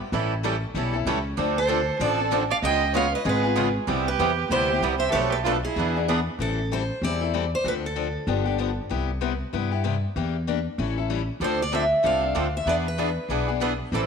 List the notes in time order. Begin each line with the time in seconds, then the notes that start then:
0.12 A1 E3 G3 C#4 E4 A4
0.43 E3 G3 C#4 E4 A4
0.74 B1 E3 G3 C#4 E4 A4
0.93 C#4 E4 A4
1.05 C#2 E3 G3 C#4 E4 A4
1.38 D2 D3 F3 C4 D4 A4
1.57 A4 C5
1.69 D3 F3 C4 D4 A4
1.99 A1 D3 F3 C4 D4 A4 D5
2.18 C4 D4 A4
2.31 D3 F3 C4 D4 A4
2.51 D5 F5
2.62 C#2 C#3 G#3 B3 F4 G#4 D#5 G5
2.94 C#3 G#3 B3 F4 G#4 C#5 F5
3.14 B4 D#5
3.25 G#1 C#3 G#3 B3 F4 G#4
3.29 B4
3.43 B3 F4 G#4
3.57 C#3 G#3 B3 F4 G#4
3.87 C2 C3 G3 B3 E4 G4
4.06 G4 B4
4.19 E2 C3 G3 B3 E4 G4
4.49 D2 C3 G3 B3 E4 G4 C5
4.70 B3 E4 G4
4.81 C2 C3 G3 B3 E4 G4
4.98 C5 E5
5.10 B1 B2 F3 G4 A4 B4 C#5
5.14 A3 D4 A4 B4
5.30 G4 B4
5.44 B2 F3 A3 D4 F4 A4 B4
5.64 E4 G#4
5.76 E2 E3 B3 D4 G#4 B4
5.95 B3 D4 G#4
6.09 E3 B3 D4 G#4 B4
6.39 A1 E3 G3 C4 E4 A4
6.72 E3 G3 C4 E4 A4 C5
7.02 E2 E3 G3 C4 E4 A4 D5
7.21 C4 E4 A4
7.34 E3 G3 C4 E4 A4
7.55 C5
7.64 D2 D3 F3 C4 D4 A4 B4
7.86 A4
7.96 D3 F3 C4 D4 A4
8.27 G1 D3 F3 B3 D4 G4
8.46 B3 D4 G4
8.58 D3 F3 B3 D4 G4
8.89 C2 C3 G3 B3 E4 G4
9.21 C3 G3 B3 E4 G4
9.53 G2 C3 G3 B3 E4 G4
9.71 B3 E4 G4
9.84 C3 G3 B3 E4 G4
10.16 E2 E3 A#3 D4 G4
10.47 E3 A#3 D4 G4
10.78 A1 E3 G3 C#4 E4 A4
10.98 C#4 E4 A4
11.10 E3 G3 C#4 E4 A4
11.40 D2 D3 F3 C4 D4 A4
11.44 C5
11.62 D5
11.72 D3 F3 C4 D4 A4 E5
12.03 C2 D3 F3 C4 D4 A4 F5
12.21 C4 D4 A4
12.35 D2 D3 F3 C4 D4 A4
12.57 E5
12.66 E2 E3 B3 D4 G#4 B4 D5
12.88 B4
12.98 E3 B3 D4 G#4 B4
13.29 B1 E3 B3 D4 G#4 B4
13.48 B3 D4 G#4
13.60 E3 B3 D4 G#4 B4
13.92 A1 E3 G3 C4 E4 A4